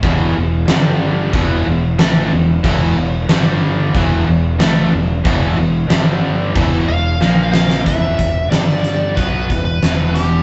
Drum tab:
CC |x---x---x---x---|x---x---x---x---|x---x---x-------|----------------|
HH |----------------|----------------|----------------|x-x-x-x-x-x-x-x-|
SD |----o-------o---|----o-------o---|----o-------o-oo|----oo------o---|
BD |o-------o-------|o-------o-------|o-------o-------|o-o-----o-o-----|